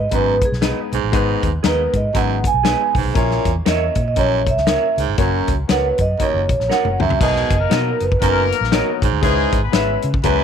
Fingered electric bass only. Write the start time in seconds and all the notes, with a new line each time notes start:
0.12 G#1
0.52 B1
0.92 B1
1.03 A1
1.13 G#1
1.43 D#2
1.64 D#2
1.94 G#2
2.15 G#1
2.54 B1
2.95 B1
3.04 B1
3.16 A#1
3.45 E2
3.66 E2
3.96 A#2
4.17 A#1
4.57 C#2
4.98 C#2
5.08 G1
5.18 F#1
5.48 C#2
5.69 C#2
5.99 F#2
6.34 F#1
6.49 A#1
6.60 A#1
6.85 F#1
6.99 C#2
7.09 C2
7.21 B1
7.50 F#1
7.71 B2
8.01 F#1
8.22 F#1
8.61 A#1
9.02 A#1
9.12 D2
9.23 C#2
9.52 G#1
9.73 G#1
10.04 C#3
10.24 C#2